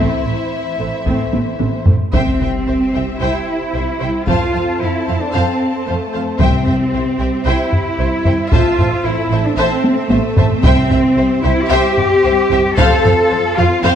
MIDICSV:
0, 0, Header, 1, 11, 480
1, 0, Start_track
1, 0, Key_signature, 0, "major"
1, 0, Tempo, 539568
1, 1901, Time_signature, 4, 2, 24, 8
1, 3332, Tempo, 531444
1, 12550, End_track
2, 0, Start_track
2, 0, Title_t, "Violin section"
2, 0, Program_c, 0, 48
2, 0, Note_on_c, 0, 76, 64
2, 1632, Note_off_c, 0, 76, 0
2, 1904, Note_on_c, 0, 79, 53
2, 2125, Note_off_c, 0, 79, 0
2, 2158, Note_on_c, 0, 79, 40
2, 2229, Note_off_c, 0, 79, 0
2, 2383, Note_on_c, 0, 76, 40
2, 2454, Note_off_c, 0, 76, 0
2, 2623, Note_on_c, 0, 79, 45
2, 2694, Note_off_c, 0, 79, 0
2, 2850, Note_on_c, 0, 79, 60
2, 3075, Note_off_c, 0, 79, 0
2, 3348, Note_on_c, 0, 76, 43
2, 3421, Note_off_c, 0, 76, 0
2, 3580, Note_on_c, 0, 79, 47
2, 3653, Note_off_c, 0, 79, 0
2, 3818, Note_on_c, 0, 81, 58
2, 4039, Note_off_c, 0, 81, 0
2, 4067, Note_on_c, 0, 81, 39
2, 4139, Note_off_c, 0, 81, 0
2, 4315, Note_on_c, 0, 77, 46
2, 4387, Note_off_c, 0, 77, 0
2, 4547, Note_on_c, 0, 81, 47
2, 4619, Note_off_c, 0, 81, 0
2, 4781, Note_on_c, 0, 81, 57
2, 5000, Note_off_c, 0, 81, 0
2, 5269, Note_on_c, 0, 77, 45
2, 5341, Note_off_c, 0, 77, 0
2, 5499, Note_on_c, 0, 81, 49
2, 5571, Note_off_c, 0, 81, 0
2, 5739, Note_on_c, 0, 79, 66
2, 5959, Note_off_c, 0, 79, 0
2, 5977, Note_on_c, 0, 79, 43
2, 6049, Note_off_c, 0, 79, 0
2, 6228, Note_on_c, 0, 76, 45
2, 6300, Note_off_c, 0, 76, 0
2, 6443, Note_on_c, 0, 79, 47
2, 6515, Note_off_c, 0, 79, 0
2, 6675, Note_on_c, 0, 79, 65
2, 6904, Note_off_c, 0, 79, 0
2, 7170, Note_on_c, 0, 76, 46
2, 7242, Note_off_c, 0, 76, 0
2, 7408, Note_on_c, 0, 79, 52
2, 7480, Note_off_c, 0, 79, 0
2, 7651, Note_on_c, 0, 81, 68
2, 7870, Note_off_c, 0, 81, 0
2, 7886, Note_on_c, 0, 81, 49
2, 7958, Note_off_c, 0, 81, 0
2, 8128, Note_on_c, 0, 76, 53
2, 8200, Note_off_c, 0, 76, 0
2, 8358, Note_on_c, 0, 81, 49
2, 8431, Note_off_c, 0, 81, 0
2, 8598, Note_on_c, 0, 81, 77
2, 8821, Note_off_c, 0, 81, 0
2, 9073, Note_on_c, 0, 76, 60
2, 9146, Note_off_c, 0, 76, 0
2, 9323, Note_on_c, 0, 81, 60
2, 9396, Note_off_c, 0, 81, 0
2, 9562, Note_on_c, 0, 79, 88
2, 9779, Note_off_c, 0, 79, 0
2, 9790, Note_on_c, 0, 79, 57
2, 9862, Note_off_c, 0, 79, 0
2, 10043, Note_on_c, 0, 76, 57
2, 10115, Note_off_c, 0, 76, 0
2, 10270, Note_on_c, 0, 79, 63
2, 10342, Note_off_c, 0, 79, 0
2, 10519, Note_on_c, 0, 79, 74
2, 10744, Note_off_c, 0, 79, 0
2, 11011, Note_on_c, 0, 76, 74
2, 11083, Note_off_c, 0, 76, 0
2, 11254, Note_on_c, 0, 79, 77
2, 11326, Note_off_c, 0, 79, 0
2, 11495, Note_on_c, 0, 77, 81
2, 11716, Note_off_c, 0, 77, 0
2, 11726, Note_on_c, 0, 77, 63
2, 11798, Note_off_c, 0, 77, 0
2, 11955, Note_on_c, 0, 72, 60
2, 12027, Note_off_c, 0, 72, 0
2, 12218, Note_on_c, 0, 77, 66
2, 12290, Note_off_c, 0, 77, 0
2, 12450, Note_on_c, 0, 77, 78
2, 12550, Note_off_c, 0, 77, 0
2, 12550, End_track
3, 0, Start_track
3, 0, Title_t, "Violin section"
3, 0, Program_c, 1, 48
3, 0, Note_on_c, 1, 64, 55
3, 0, Note_on_c, 1, 72, 58
3, 1686, Note_off_c, 1, 72, 0
3, 1724, Note_off_c, 1, 64, 0
3, 1910, Note_on_c, 1, 76, 58
3, 2128, Note_off_c, 1, 76, 0
3, 2154, Note_on_c, 1, 76, 44
3, 2225, Note_off_c, 1, 76, 0
3, 2377, Note_on_c, 1, 72, 42
3, 2448, Note_off_c, 1, 72, 0
3, 2625, Note_on_c, 1, 76, 43
3, 2696, Note_off_c, 1, 76, 0
3, 2872, Note_on_c, 1, 76, 51
3, 3087, Note_off_c, 1, 76, 0
3, 3337, Note_on_c, 1, 72, 44
3, 3410, Note_off_c, 1, 72, 0
3, 3575, Note_on_c, 1, 76, 43
3, 3647, Note_off_c, 1, 76, 0
3, 3819, Note_on_c, 1, 77, 54
3, 4039, Note_off_c, 1, 77, 0
3, 4055, Note_on_c, 1, 77, 40
3, 4127, Note_off_c, 1, 77, 0
3, 4301, Note_on_c, 1, 72, 44
3, 4374, Note_off_c, 1, 72, 0
3, 4542, Note_on_c, 1, 77, 45
3, 4615, Note_off_c, 1, 77, 0
3, 4770, Note_on_c, 1, 77, 62
3, 4994, Note_off_c, 1, 77, 0
3, 5255, Note_on_c, 1, 72, 49
3, 5327, Note_off_c, 1, 72, 0
3, 5495, Note_on_c, 1, 77, 46
3, 5567, Note_off_c, 1, 77, 0
3, 5733, Note_on_c, 1, 76, 58
3, 5956, Note_off_c, 1, 76, 0
3, 5974, Note_on_c, 1, 76, 47
3, 6046, Note_off_c, 1, 76, 0
3, 6216, Note_on_c, 1, 72, 44
3, 6288, Note_off_c, 1, 72, 0
3, 6450, Note_on_c, 1, 76, 49
3, 6523, Note_off_c, 1, 76, 0
3, 6692, Note_on_c, 1, 76, 57
3, 6913, Note_off_c, 1, 76, 0
3, 7175, Note_on_c, 1, 72, 48
3, 7247, Note_off_c, 1, 72, 0
3, 7401, Note_on_c, 1, 76, 54
3, 7473, Note_off_c, 1, 76, 0
3, 7641, Note_on_c, 1, 76, 65
3, 7865, Note_off_c, 1, 76, 0
3, 7880, Note_on_c, 1, 76, 50
3, 7952, Note_off_c, 1, 76, 0
3, 8109, Note_on_c, 1, 72, 52
3, 8181, Note_off_c, 1, 72, 0
3, 8360, Note_on_c, 1, 76, 55
3, 8432, Note_off_c, 1, 76, 0
3, 8601, Note_on_c, 1, 76, 67
3, 8823, Note_off_c, 1, 76, 0
3, 9084, Note_on_c, 1, 72, 58
3, 9156, Note_off_c, 1, 72, 0
3, 9321, Note_on_c, 1, 76, 59
3, 9393, Note_off_c, 1, 76, 0
3, 9558, Note_on_c, 1, 76, 74
3, 9783, Note_off_c, 1, 76, 0
3, 9802, Note_on_c, 1, 76, 55
3, 9874, Note_off_c, 1, 76, 0
3, 10044, Note_on_c, 1, 72, 50
3, 10116, Note_off_c, 1, 72, 0
3, 10279, Note_on_c, 1, 76, 64
3, 10352, Note_off_c, 1, 76, 0
3, 10527, Note_on_c, 1, 76, 84
3, 10748, Note_off_c, 1, 76, 0
3, 11010, Note_on_c, 1, 72, 68
3, 11083, Note_off_c, 1, 72, 0
3, 11249, Note_on_c, 1, 76, 70
3, 11321, Note_off_c, 1, 76, 0
3, 11491, Note_on_c, 1, 77, 87
3, 11714, Note_off_c, 1, 77, 0
3, 11741, Note_on_c, 1, 77, 67
3, 11813, Note_off_c, 1, 77, 0
3, 11991, Note_on_c, 1, 72, 55
3, 12063, Note_off_c, 1, 72, 0
3, 12233, Note_on_c, 1, 77, 74
3, 12306, Note_off_c, 1, 77, 0
3, 12464, Note_on_c, 1, 77, 87
3, 12550, Note_off_c, 1, 77, 0
3, 12550, End_track
4, 0, Start_track
4, 0, Title_t, "Viola section"
4, 0, Program_c, 2, 48
4, 0, Note_on_c, 2, 57, 51
4, 0, Note_on_c, 2, 60, 50
4, 200, Note_off_c, 2, 57, 0
4, 201, Note_off_c, 2, 60, 0
4, 220, Note_on_c, 2, 57, 37
4, 221, Note_off_c, 2, 57, 0
4, 221, Note_on_c, 2, 57, 37
4, 292, Note_off_c, 2, 57, 0
4, 707, Note_on_c, 2, 57, 37
4, 710, Note_off_c, 2, 57, 0
4, 710, Note_on_c, 2, 57, 37
4, 781, Note_off_c, 2, 57, 0
4, 945, Note_on_c, 2, 57, 50
4, 949, Note_on_c, 2, 60, 51
4, 1167, Note_off_c, 2, 57, 0
4, 1169, Note_off_c, 2, 60, 0
4, 1186, Note_on_c, 2, 57, 35
4, 1189, Note_off_c, 2, 57, 0
4, 1189, Note_on_c, 2, 57, 34
4, 1260, Note_off_c, 2, 57, 0
4, 1413, Note_on_c, 2, 57, 36
4, 1415, Note_on_c, 2, 52, 34
4, 1484, Note_off_c, 2, 57, 0
4, 1486, Note_off_c, 2, 52, 0
4, 1657, Note_on_c, 2, 57, 36
4, 1728, Note_off_c, 2, 57, 0
4, 1896, Note_on_c, 2, 72, 54
4, 2121, Note_off_c, 2, 72, 0
4, 2133, Note_on_c, 2, 72, 42
4, 2205, Note_off_c, 2, 72, 0
4, 2378, Note_on_c, 2, 72, 42
4, 2449, Note_off_c, 2, 72, 0
4, 2615, Note_on_c, 2, 72, 38
4, 2686, Note_off_c, 2, 72, 0
4, 2856, Note_on_c, 2, 72, 59
4, 3078, Note_off_c, 2, 72, 0
4, 3326, Note_on_c, 2, 72, 46
4, 3398, Note_off_c, 2, 72, 0
4, 3559, Note_on_c, 2, 72, 57
4, 3631, Note_off_c, 2, 72, 0
4, 3811, Note_on_c, 2, 72, 54
4, 4024, Note_off_c, 2, 72, 0
4, 4035, Note_on_c, 2, 72, 44
4, 4107, Note_off_c, 2, 72, 0
4, 4274, Note_on_c, 2, 72, 41
4, 4346, Note_off_c, 2, 72, 0
4, 4517, Note_on_c, 2, 72, 39
4, 4590, Note_off_c, 2, 72, 0
4, 4761, Note_on_c, 2, 72, 59
4, 4989, Note_off_c, 2, 72, 0
4, 5246, Note_on_c, 2, 72, 51
4, 5318, Note_off_c, 2, 72, 0
4, 5480, Note_on_c, 2, 72, 45
4, 5552, Note_off_c, 2, 72, 0
4, 5714, Note_on_c, 2, 72, 62
4, 5946, Note_off_c, 2, 72, 0
4, 5961, Note_on_c, 2, 72, 43
4, 6033, Note_off_c, 2, 72, 0
4, 6211, Note_on_c, 2, 72, 47
4, 6284, Note_off_c, 2, 72, 0
4, 6457, Note_on_c, 2, 72, 52
4, 6529, Note_off_c, 2, 72, 0
4, 6680, Note_on_c, 2, 72, 66
4, 6907, Note_off_c, 2, 72, 0
4, 7162, Note_on_c, 2, 72, 53
4, 7234, Note_off_c, 2, 72, 0
4, 7408, Note_on_c, 2, 72, 53
4, 7480, Note_off_c, 2, 72, 0
4, 7646, Note_on_c, 2, 72, 67
4, 7867, Note_off_c, 2, 72, 0
4, 7891, Note_on_c, 2, 72, 51
4, 7963, Note_off_c, 2, 72, 0
4, 8143, Note_on_c, 2, 72, 46
4, 8215, Note_off_c, 2, 72, 0
4, 8366, Note_on_c, 2, 72, 51
4, 8438, Note_off_c, 2, 72, 0
4, 8597, Note_on_c, 2, 72, 80
4, 8821, Note_off_c, 2, 72, 0
4, 9070, Note_on_c, 2, 72, 57
4, 9142, Note_off_c, 2, 72, 0
4, 9320, Note_on_c, 2, 72, 67
4, 9392, Note_off_c, 2, 72, 0
4, 9566, Note_on_c, 2, 72, 72
4, 9787, Note_off_c, 2, 72, 0
4, 9813, Note_on_c, 2, 72, 53
4, 9885, Note_off_c, 2, 72, 0
4, 10045, Note_on_c, 2, 72, 54
4, 10117, Note_off_c, 2, 72, 0
4, 10281, Note_on_c, 2, 72, 58
4, 10353, Note_off_c, 2, 72, 0
4, 10523, Note_on_c, 2, 72, 86
4, 10746, Note_off_c, 2, 72, 0
4, 11003, Note_on_c, 2, 72, 67
4, 11075, Note_off_c, 2, 72, 0
4, 11249, Note_on_c, 2, 72, 71
4, 11322, Note_off_c, 2, 72, 0
4, 11491, Note_on_c, 2, 72, 85
4, 11714, Note_off_c, 2, 72, 0
4, 11734, Note_on_c, 2, 72, 62
4, 11806, Note_off_c, 2, 72, 0
4, 11975, Note_on_c, 2, 72, 56
4, 12048, Note_off_c, 2, 72, 0
4, 12216, Note_on_c, 2, 72, 58
4, 12288, Note_off_c, 2, 72, 0
4, 12450, Note_on_c, 2, 72, 88
4, 12550, Note_off_c, 2, 72, 0
4, 12550, End_track
5, 0, Start_track
5, 0, Title_t, "String section"
5, 0, Program_c, 3, 48
5, 1903, Note_on_c, 3, 60, 60
5, 1903, Note_on_c, 3, 72, 59
5, 1903, Note_on_c, 3, 76, 59
5, 1907, Note_on_c, 3, 67, 60
5, 3778, Note_off_c, 3, 76, 0
5, 3780, Note_off_c, 3, 67, 0
5, 3808, Note_on_c, 3, 69, 58
5, 3818, Note_on_c, 3, 81, 68
5, 5729, Note_off_c, 3, 69, 0
5, 5731, Note_on_c, 3, 76, 66
5, 5734, Note_off_c, 3, 81, 0
5, 5736, Note_on_c, 3, 67, 62
5, 7610, Note_off_c, 3, 60, 0
5, 7610, Note_off_c, 3, 72, 0
5, 7640, Note_on_c, 3, 60, 76
5, 7645, Note_on_c, 3, 72, 75
5, 7647, Note_off_c, 3, 67, 0
5, 7647, Note_on_c, 3, 69, 71
5, 9560, Note_off_c, 3, 69, 0
5, 9568, Note_on_c, 3, 67, 78
5, 11485, Note_off_c, 3, 76, 0
5, 11489, Note_on_c, 3, 65, 93
5, 11490, Note_off_c, 3, 67, 0
5, 11491, Note_on_c, 3, 77, 87
5, 12550, Note_off_c, 3, 60, 0
5, 12550, Note_off_c, 3, 65, 0
5, 12550, Note_off_c, 3, 72, 0
5, 12550, Note_off_c, 3, 77, 0
5, 12550, End_track
6, 0, Start_track
6, 0, Title_t, "Cello section"
6, 0, Program_c, 4, 48
6, 0, Note_on_c, 4, 52, 51
6, 1632, Note_off_c, 4, 52, 0
6, 1902, Note_on_c, 4, 60, 77
6, 2823, Note_off_c, 4, 60, 0
6, 2859, Note_on_c, 4, 64, 68
6, 3807, Note_on_c, 4, 65, 77
6, 3814, Note_off_c, 4, 64, 0
6, 4281, Note_off_c, 4, 65, 0
6, 4296, Note_on_c, 4, 64, 69
6, 4655, Note_off_c, 4, 64, 0
6, 4655, Note_on_c, 4, 62, 65
6, 4771, Note_on_c, 4, 60, 74
6, 4774, Note_off_c, 4, 62, 0
6, 5249, Note_on_c, 4, 57, 64
6, 5250, Note_off_c, 4, 60, 0
6, 5730, Note_off_c, 4, 57, 0
6, 5737, Note_on_c, 4, 60, 85
6, 6673, Note_off_c, 4, 60, 0
6, 6689, Note_on_c, 4, 64, 77
6, 7643, Note_on_c, 4, 65, 89
6, 7645, Note_off_c, 4, 64, 0
6, 8111, Note_off_c, 4, 65, 0
6, 8120, Note_on_c, 4, 64, 80
6, 8479, Note_off_c, 4, 64, 0
6, 8485, Note_on_c, 4, 62, 80
6, 8595, Note_on_c, 4, 60, 87
6, 8602, Note_off_c, 4, 62, 0
6, 9066, Note_off_c, 4, 60, 0
6, 9073, Note_on_c, 4, 57, 81
6, 9550, Note_on_c, 4, 60, 98
6, 9557, Note_off_c, 4, 57, 0
6, 10261, Note_off_c, 4, 60, 0
6, 10275, Note_on_c, 4, 64, 95
6, 10513, Note_off_c, 4, 64, 0
6, 10515, Note_on_c, 4, 67, 113
6, 11476, Note_on_c, 4, 69, 113
6, 11483, Note_off_c, 4, 67, 0
6, 12193, Note_off_c, 4, 69, 0
6, 12213, Note_on_c, 4, 65, 105
6, 12446, Note_on_c, 4, 60, 108
6, 12454, Note_off_c, 4, 65, 0
6, 12550, Note_off_c, 4, 60, 0
6, 12550, End_track
7, 0, Start_track
7, 0, Title_t, "French horn section"
7, 0, Program_c, 5, 60
7, 0, Note_on_c, 5, 57, 52
7, 0, Note_on_c, 5, 60, 65
7, 1619, Note_off_c, 5, 60, 0
7, 1632, Note_off_c, 5, 57, 0
7, 1905, Note_on_c, 5, 60, 64
7, 2824, Note_off_c, 5, 60, 0
7, 2868, Note_on_c, 5, 64, 65
7, 3803, Note_on_c, 5, 65, 66
7, 3818, Note_off_c, 5, 64, 0
7, 4278, Note_off_c, 5, 65, 0
7, 4289, Note_on_c, 5, 64, 58
7, 4644, Note_off_c, 5, 64, 0
7, 4665, Note_on_c, 5, 62, 58
7, 4775, Note_on_c, 5, 60, 61
7, 4777, Note_off_c, 5, 62, 0
7, 5253, Note_off_c, 5, 60, 0
7, 5254, Note_on_c, 5, 57, 62
7, 5714, Note_on_c, 5, 60, 72
7, 5733, Note_off_c, 5, 57, 0
7, 6662, Note_off_c, 5, 60, 0
7, 6678, Note_on_c, 5, 64, 74
7, 7639, Note_off_c, 5, 64, 0
7, 7656, Note_on_c, 5, 65, 82
7, 8118, Note_off_c, 5, 65, 0
7, 8135, Note_on_c, 5, 64, 77
7, 8471, Note_on_c, 5, 62, 70
7, 8487, Note_off_c, 5, 64, 0
7, 8595, Note_off_c, 5, 62, 0
7, 8609, Note_on_c, 5, 60, 79
7, 8921, Note_off_c, 5, 60, 0
7, 9063, Note_on_c, 5, 57, 77
7, 9542, Note_off_c, 5, 57, 0
7, 9561, Note_on_c, 5, 60, 90
7, 10281, Note_off_c, 5, 60, 0
7, 10294, Note_on_c, 5, 64, 83
7, 10525, Note_on_c, 5, 67, 100
7, 10528, Note_off_c, 5, 64, 0
7, 11487, Note_off_c, 5, 67, 0
7, 11491, Note_on_c, 5, 69, 98
7, 12201, Note_off_c, 5, 69, 0
7, 12205, Note_on_c, 5, 65, 83
7, 12450, Note_off_c, 5, 65, 0
7, 12454, Note_on_c, 5, 60, 87
7, 12550, Note_off_c, 5, 60, 0
7, 12550, End_track
8, 0, Start_track
8, 0, Title_t, "Timpani"
8, 0, Program_c, 6, 47
8, 5737, Note_on_c, 6, 48, 75
8, 6418, Note_off_c, 6, 48, 0
8, 9571, Note_on_c, 6, 48, 77
8, 10250, Note_off_c, 6, 48, 0
8, 12550, End_track
9, 0, Start_track
9, 0, Title_t, "Double bass section"
9, 0, Program_c, 7, 48
9, 222, Note_on_c, 7, 33, 41
9, 293, Note_off_c, 7, 33, 0
9, 712, Note_on_c, 7, 33, 41
9, 784, Note_off_c, 7, 33, 0
9, 945, Note_on_c, 7, 33, 48
9, 1016, Note_off_c, 7, 33, 0
9, 1191, Note_on_c, 7, 33, 36
9, 1262, Note_off_c, 7, 33, 0
9, 1429, Note_on_c, 7, 33, 36
9, 1500, Note_off_c, 7, 33, 0
9, 1664, Note_on_c, 7, 33, 36
9, 1735, Note_off_c, 7, 33, 0
9, 1901, Note_on_c, 7, 36, 60
9, 1973, Note_off_c, 7, 36, 0
9, 2143, Note_on_c, 7, 36, 43
9, 2214, Note_off_c, 7, 36, 0
9, 2379, Note_on_c, 7, 36, 41
9, 2450, Note_off_c, 7, 36, 0
9, 2624, Note_on_c, 7, 36, 46
9, 2695, Note_off_c, 7, 36, 0
9, 2858, Note_on_c, 7, 36, 53
9, 2929, Note_off_c, 7, 36, 0
9, 3341, Note_on_c, 7, 36, 44
9, 3413, Note_off_c, 7, 36, 0
9, 3574, Note_on_c, 7, 36, 44
9, 3646, Note_off_c, 7, 36, 0
9, 3809, Note_on_c, 7, 41, 64
9, 3881, Note_off_c, 7, 41, 0
9, 4057, Note_on_c, 7, 41, 45
9, 4129, Note_off_c, 7, 41, 0
9, 4292, Note_on_c, 7, 41, 44
9, 4364, Note_off_c, 7, 41, 0
9, 4538, Note_on_c, 7, 41, 51
9, 4611, Note_off_c, 7, 41, 0
9, 4776, Note_on_c, 7, 41, 56
9, 4849, Note_off_c, 7, 41, 0
9, 5259, Note_on_c, 7, 41, 44
9, 5331, Note_off_c, 7, 41, 0
9, 5493, Note_on_c, 7, 41, 42
9, 5566, Note_off_c, 7, 41, 0
9, 5733, Note_on_c, 7, 36, 64
9, 5805, Note_off_c, 7, 36, 0
9, 5975, Note_on_c, 7, 36, 50
9, 6047, Note_off_c, 7, 36, 0
9, 6213, Note_on_c, 7, 36, 45
9, 6285, Note_off_c, 7, 36, 0
9, 6448, Note_on_c, 7, 36, 52
9, 6521, Note_off_c, 7, 36, 0
9, 6684, Note_on_c, 7, 36, 65
9, 6756, Note_off_c, 7, 36, 0
9, 7164, Note_on_c, 7, 36, 53
9, 7236, Note_off_c, 7, 36, 0
9, 7404, Note_on_c, 7, 36, 49
9, 7476, Note_off_c, 7, 36, 0
9, 7644, Note_on_c, 7, 33, 70
9, 7716, Note_off_c, 7, 33, 0
9, 7884, Note_on_c, 7, 33, 54
9, 7956, Note_off_c, 7, 33, 0
9, 8124, Note_on_c, 7, 33, 54
9, 8196, Note_off_c, 7, 33, 0
9, 8356, Note_on_c, 7, 33, 61
9, 8428, Note_off_c, 7, 33, 0
9, 8597, Note_on_c, 7, 33, 70
9, 8669, Note_off_c, 7, 33, 0
9, 9076, Note_on_c, 7, 33, 59
9, 9149, Note_off_c, 7, 33, 0
9, 9318, Note_on_c, 7, 33, 56
9, 9390, Note_off_c, 7, 33, 0
9, 9556, Note_on_c, 7, 36, 76
9, 9628, Note_off_c, 7, 36, 0
9, 9797, Note_on_c, 7, 36, 61
9, 9869, Note_off_c, 7, 36, 0
9, 10043, Note_on_c, 7, 36, 55
9, 10115, Note_off_c, 7, 36, 0
9, 10281, Note_on_c, 7, 36, 66
9, 10354, Note_off_c, 7, 36, 0
9, 10523, Note_on_c, 7, 36, 82
9, 10595, Note_off_c, 7, 36, 0
9, 11011, Note_on_c, 7, 36, 63
9, 11083, Note_off_c, 7, 36, 0
9, 11248, Note_on_c, 7, 36, 65
9, 11320, Note_off_c, 7, 36, 0
9, 11492, Note_on_c, 7, 41, 88
9, 11564, Note_off_c, 7, 41, 0
9, 11729, Note_on_c, 7, 41, 69
9, 11801, Note_off_c, 7, 41, 0
9, 11970, Note_on_c, 7, 41, 57
9, 12042, Note_off_c, 7, 41, 0
9, 12210, Note_on_c, 7, 41, 70
9, 12282, Note_off_c, 7, 41, 0
9, 12444, Note_on_c, 7, 41, 85
9, 12517, Note_off_c, 7, 41, 0
9, 12550, End_track
10, 0, Start_track
10, 0, Title_t, "Impact"
10, 0, Program_c, 8, 103
10, 1905, Note_on_c, 8, 60, 56
10, 3815, Note_off_c, 8, 60, 0
10, 12550, End_track
11, 0, Start_track
11, 0, Title_t, "Taiko and cinematic ensemble drums"
11, 944, Note_on_c, 9, 41, 65
11, 1033, Note_off_c, 9, 41, 0
11, 1190, Note_on_c, 9, 48, 72
11, 1279, Note_off_c, 9, 48, 0
11, 1425, Note_on_c, 9, 48, 72
11, 1514, Note_off_c, 9, 48, 0
11, 1662, Note_on_c, 9, 43, 74
11, 1750, Note_off_c, 9, 43, 0
11, 1896, Note_on_c, 9, 41, 85
11, 1985, Note_off_c, 9, 41, 0
11, 3807, Note_on_c, 9, 41, 82
11, 3898, Note_off_c, 9, 41, 0
11, 5724, Note_on_c, 9, 41, 88
11, 5815, Note_off_c, 9, 41, 0
11, 5972, Note_on_c, 9, 43, 40
11, 6062, Note_off_c, 9, 43, 0
11, 6926, Note_on_c, 9, 43, 45
11, 7016, Note_off_c, 9, 43, 0
11, 7403, Note_on_c, 9, 43, 45
11, 7493, Note_off_c, 9, 43, 0
11, 7644, Note_on_c, 9, 41, 93
11, 7734, Note_off_c, 9, 41, 0
11, 7885, Note_on_c, 9, 43, 45
11, 7975, Note_off_c, 9, 43, 0
11, 8838, Note_on_c, 9, 48, 84
11, 8928, Note_off_c, 9, 48, 0
11, 9073, Note_on_c, 9, 48, 87
11, 9164, Note_off_c, 9, 48, 0
11, 9311, Note_on_c, 9, 43, 87
11, 9401, Note_off_c, 9, 43, 0
11, 9554, Note_on_c, 9, 41, 90
11, 9644, Note_off_c, 9, 41, 0
11, 9797, Note_on_c, 9, 43, 48
11, 9887, Note_off_c, 9, 43, 0
11, 10764, Note_on_c, 9, 43, 52
11, 10854, Note_off_c, 9, 43, 0
11, 11245, Note_on_c, 9, 43, 50
11, 11335, Note_off_c, 9, 43, 0
11, 11489, Note_on_c, 9, 41, 96
11, 11580, Note_off_c, 9, 41, 0
11, 11732, Note_on_c, 9, 43, 49
11, 11823, Note_off_c, 9, 43, 0
11, 12550, End_track
0, 0, End_of_file